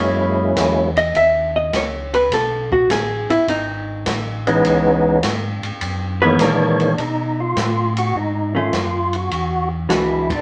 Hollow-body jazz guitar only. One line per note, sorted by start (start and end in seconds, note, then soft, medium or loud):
0.98 1.15 D#5 medium
1.17 1.55 E5 medium
1.56 1.73 D#5 medium
1.76 2.14 C#5 medium
2.15 2.32 B4 medium
2.34 2.72 A4 medium
2.72 2.90 F#4 medium
2.91 3.30 G#4 loud
3.30 3.48 E4 medium
3.49 5.20 D#4 medium
6.22 6.39 B3 medium
6.22 6.39 B4 medium
6.41 6.86 A#3 medium
6.41 6.86 A#4 medium
8.55 8.71 D#3 soft
8.55 8.72 A3 soft
8.55 8.72 C#4 medium
9.89 10.26 E3 medium
9.89 10.26 G#3 medium
9.89 10.26 D4 medium
9.89 10.26 F#4 medium